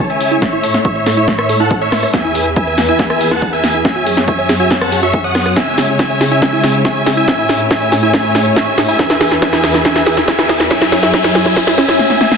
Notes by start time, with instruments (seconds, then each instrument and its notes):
Already playing: string section C#3 G#3 E4 C#5
0.10 synth arpeggio sound C#5, supersaw synth E5 G#5, closed hi-hat
0.21 open hi-hat
0.31 synth arpeggio sound E4, closed hi-hat
0.42 string section A2 A3 E4, synth arpeggio sound C#4, supersaw synth C#5 E5, kick, snare, closed hi-hat
0.53 synth arpeggio sound E4
0.63 synth arpeggio sound A4, open hi-hat
0.74 snare, closed hi-hat
0.85 supersaw synth C#5 E5, synth arpeggio sound C#6, kick, closed hi-hat
0.96 synth arpeggio sound C#5, closed hi-hat
1.06 synth arpeggio sound A4, snare, open hi-hat
1.17 synth arpeggio sound E4, supersaw synth C#5 E5, closed hi-hat
1.28 synth arpeggio sound C#5, kick, snare, closed hi-hat
1.38 supersaw synth C#5 E5, cross-stick
1.49 synth arpeggio sound A4, open hi-hat
1.60 synth arpeggio sound E4, supersaw synth A4 F#5, closed hi-hat
1.71 synth arpeggio sound A5, kick, closed hi-hat
1.81 synth arpeggio sound C#5, supersaw synth C#5 E5, closed hi-hat
1.92 cross-stick, snare, open hi-hat
2.03 synth arpeggio sound E4, cross-stick, open hi-hat
2.13 string section E2 E3 G#4 B4, synth arpeggio sound B3, supersaw synth E5 G#5, kick, snare, closed hi-hat
2.24 synth arpeggio sound E4
2.35 synth arpeggio sound G#4, open hi-hat
2.46 closed hi-hat
2.56 supersaw synth E5 G#5, synth arpeggio sound B5, kick, closed hi-hat
2.67 synth arpeggio sound B4, closed hi-hat
2.78 synth arpeggio sound G#4, snare, open hi-hat
2.88 synth arpeggio sound E4, supersaw synth E5 G#5, closed hi-hat
2.99 synth arpeggio sound B4, kick, snare, closed hi-hat
3.10 supersaw synth E5 G#5, cross-stick
3.21 synth arpeggio sound G#4, open hi-hat
3.31 synth arpeggio sound E4, supersaw synth F#5 A5, cross-stick, snare, closed hi-hat
3.42 synth arpeggio sound G#5, kick, closed hi-hat
3.53 synth arpeggio sound B4, supersaw synth E5 G#5, closed hi-hat
3.64 snare, open hi-hat
3.74 synth arpeggio sound E4, closed hi-hat
3.85 string section F#2 F#3 C#5, synth arpeggio sound C#4, supersaw synth E5 G#5, kick, snare, closed hi-hat
3.96 synth arpeggio sound F#4, closed hi-hat
4.06 synth arpeggio sound G#4, open hi-hat
4.17 snare, closed hi-hat
4.28 supersaw synth E5 G#5, synth arpeggio sound C#6, kick, closed hi-hat
4.38 synth arpeggio sound C#5, closed hi-hat
4.49 synth arpeggio sound G#4, snare, open hi-hat
4.60 synth arpeggio sound F#4, supersaw synth E5 G#5, closed hi-hat
4.71 synth arpeggio sound C#5, kick, snare, closed hi-hat
4.81 supersaw synth F#5 A5, cross-stick
4.92 synth arpeggio sound G#4, open hi-hat
5.03 synth arpeggio sound F#4, supersaw synth E5 C#6, closed hi-hat
5.14 synth arpeggio sound G#5, kick, closed hi-hat
5.24 synth arpeggio sound C#5, supersaw synth F#5 D#6, closed hi-hat
5.35 cross-stick, snare, open hi-hat
5.46 synth arpeggio sound F#4, cross-stick, open hi-hat
5.56 string section C#3 G#3 E4 C#5, synth arpeggio sound C#4, supersaw synth E5 G#5, kick, snare, closed hi-hat, riser
5.67 synth arpeggio sound E4
5.78 synth arpeggio sound G#4, snare, open hi-hat
5.89 closed hi-hat
5.99 supersaw synth E5 G#5, synth arpeggio sound C#6, kick, snare, closed hi-hat
6.10 synth arpeggio sound C#5, closed hi-hat
6.21 synth arpeggio sound G#4, snare, open hi-hat
6.31 synth arpeggio sound E4, supersaw synth E5 G#5, closed hi-hat
6.42 synth arpeggio sound C#4, supersaw synth E5 G#5, kick, snare, closed hi-hat
6.53 synth arpeggio sound E4
6.63 synth arpeggio sound G#4, snare, open hi-hat
6.74 closed hi-hat
6.85 supersaw synth E5 G#5, synth arpeggio sound C#6, kick, snare, closed hi-hat
6.96 synth arpeggio sound C#5, closed hi-hat
7.06 synth arpeggio sound G#4, snare, open hi-hat
7.17 synth arpeggio sound E4, supersaw synth E5 G#5, closed hi-hat
7.28 string section A2 A3 C#5, synth arpeggio sound C#4, supersaw synth E5 G#5, kick, snare, closed hi-hat
7.38 synth arpeggio sound E4
7.49 synth arpeggio sound G#4, snare, open hi-hat
7.60 closed hi-hat
7.71 supersaw synth E5 G#5, synth arpeggio sound C#6, kick, snare, closed hi-hat
7.81 synth arpeggio sound C#5, closed hi-hat
7.92 synth arpeggio sound G#4, snare, open hi-hat
8.03 synth arpeggio sound E4, supersaw synth E5 G#5, closed hi-hat
8.14 synth arpeggio sound C#4, supersaw synth E5 G#5, kick, snare, closed hi-hat
8.24 synth arpeggio sound E4
8.35 synth arpeggio sound G#4, snare, open hi-hat
8.46 closed hi-hat
8.56 supersaw synth E5 G#5, synth arpeggio sound C#6, kick, snare, closed hi-hat
8.67 synth arpeggio sound C#5, closed hi-hat
8.78 synth arpeggio sound G#4, snare, open hi-hat
8.88 synth arpeggio sound E4, supersaw synth E5 G#5, open hi-hat
8.99 string section E2 E3 G#4 B4, synth arpeggio sound C#4, supersaw synth E5 G#5, kick, snare, closed hi-hat
9.10 synth arpeggio sound E4, snare
9.21 synth arpeggio sound G#4, snare, open hi-hat
9.31 snare
9.42 synth arpeggio sound C#4, supersaw synth E5 G#5, kick, snare, closed hi-hat
9.53 synth arpeggio sound E4, snare, closed hi-hat
9.63 synth arpeggio sound G#4, snare, open hi-hat
9.74 snare, closed hi-hat
9.85 synth arpeggio sound C#4, supersaw synth E5 G#5, kick, snare, closed hi-hat
9.96 synth arpeggio sound E4, snare
10.06 synth arpeggio sound G#4, snare, open hi-hat
10.17 snare, closed hi-hat
10.28 synth arpeggio sound C#4, supersaw synth E5 G#5, kick, snare, closed hi-hat
10.38 synth arpeggio sound E4, snare, closed hi-hat
10.49 synth arpeggio sound G#4, snare, open hi-hat
10.60 snare, closed hi-hat
10.71 string section F#2 F#3 G#4 C#5, synth arpeggio sound C#4, supersaw synth E5 G#5, kick, snare, closed hi-hat
10.81 synth arpeggio sound E4, snare, closed hi-hat
10.92 synth arpeggio sound C#4, supersaw synth E5 G#5, snare, open hi-hat
11.03 synth arpeggio sound E4, snare, closed hi-hat
11.13 synth arpeggio sound C#4, supersaw synth E5 G#5, kick, snare, closed hi-hat
11.24 synth arpeggio sound E4, snare, closed hi-hat
11.35 synth arpeggio sound C#4, supersaw synth E5 G#5, snare, open hi-hat
11.46 synth arpeggio sound E4, snare, closed hi-hat
11.56 synth arpeggio sound C#4, supersaw synth E5 G#5, kick, snare, closed hi-hat, swell
11.67 synth arpeggio sound E4, snare, closed hi-hat
11.78 synth arpeggio sound C#4, supersaw synth E5 G#5, snare, open hi-hat
11.89 synth arpeggio sound E4, snare, closed hi-hat
11.99 supersaw synth E5 G#5, snare
12.10 snare
12.21 supersaw synth E5 G#5, snare
12.32 snare